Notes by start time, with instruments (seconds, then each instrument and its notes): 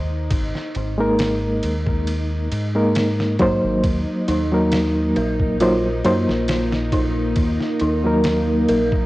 Already playing: fingered electric bass D#2, synth drone D#4
0.30 fingered electric bass G#1, kick, ride
0.55 snare
0.75 fingered electric bass G#1, ride
0.98 reed electric piano G#3 A#3 D#4 A#4
1.19 snare, ride
1.63 fingered electric bass D#2, ride
1.87 kick
2.07 ride
2.52 fingered electric bass G#2, ride
2.75 reed electric piano G#3 A#3 D#4 A#4
2.95 snare, ride
3.20 snare
3.39 reed electric piano F#3 A#3 D#4 C5, kick, ride
3.64 fingered electric bass G#1
3.84 fingered electric bass D#2, ambient pad A#3 A#4, kick, ride
4.28 fingered electric bass D#2, synth bell D#4, ride
4.52 reed electric piano F#3 A#3 D#4 A#4
4.72 snare, ride
5.16 fingered electric bass A#1, synth bell A#4, ride
5.40 kick
5.60 reed electric piano F#3 A#3 D#4 C5, synth bell F4, ride
6.05 fingered electric bass F#2, reed electric piano F#3 A#3 D#4 C5, ride
6.29 fingered electric bass A#1, snare
6.48 snare, ride
6.73 snare
6.92 synth bell D#4, kick, ride
7.36 fingered electric bass D#2, kick, ride
7.61 snare
7.80 fingered electric bass D#2, synth bell D#4, ride
8.04 reed electric piano F#3 A#3 D#4 A#4
8.24 snare, ride
8.68 fingered electric bass A#1, synth bell A#4, ride
8.92 kick